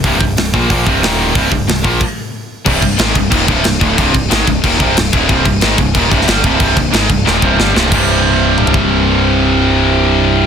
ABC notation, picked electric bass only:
X:1
M:4/4
L:1/8
Q:1/4=183
K:Cm
V:1 name="Picked electric bass" clef=bass
C,,, C,,, C,,, B,,, B,,, C,,, E,,,2 | C,,, C,,, C,,, B,,, z4 | C,,, C,,, A,,, C,,, E,,, C,,, C,,, D,,, | C,,, C,,, A,,, C,,, E,,, C,,, C,,, D,,, |
C,,, C,,, A,,, C,,, E,,, C,,, G,,, C,,, | C,,, C,,, A,,, C,,, E,,, C,,, G,,, C,,, | C,,,8- | C,,,8 |]